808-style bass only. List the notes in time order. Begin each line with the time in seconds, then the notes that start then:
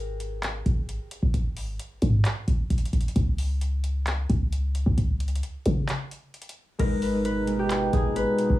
Already playing: G#1
0.66 G#1
1.23 G#1
1.34 G#1
2.02 G#2
2.48 G#1
2.70 G#1
2.93 G#1
3.16 C#2
4.30 C#2
4.86 C#2
4.98 C#2
5.66 C#3
6.79 G#1
7.93 G#1
8.50 G#1